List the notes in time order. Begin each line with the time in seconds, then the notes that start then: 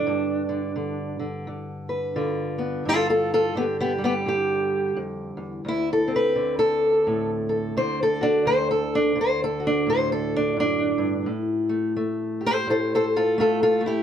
Already playing: D3 D4
0.07 G2
0.49 D3
0.76 D3
1.19 D3
1.47 D3
1.89 B4
2.16 D3 F4
2.58 B3
2.85 G2 F4 A4
3.10 F4 A4
3.34 F4 A4
3.55 D3 B3 G4
3.81 B3 G4
3.98 G3
4.04 B3 G4
4.26 D3 G4
4.97 F2
5.37 E2
5.65 D2 E4
5.93 A4
6.08 C4
6.16 B4
6.36 D3
6.59 A4
7.07 A2
7.49 A4
7.77 D3 C5
8.03 A4
8.21 D4 F#4
8.45 D2 C5
8.71 A4
8.95 D4
9.16 D3
9.21 C5
9.44 A4
9.60 F#4
9.67 D4
9.87 A2 C5
10.12 A4
10.36 D4
10.57 F#2 D4
10.98 G2
11.26 A2
11.69 A3
11.96 A3
12.41 G4
12.46 A4 C5
12.67 A2 A4 C5
12.95 A4 C5
13.16 F4 A4
13.38 A3 F4 A4
13.63 F4 A4
13.81 A3
13.86 E4 G4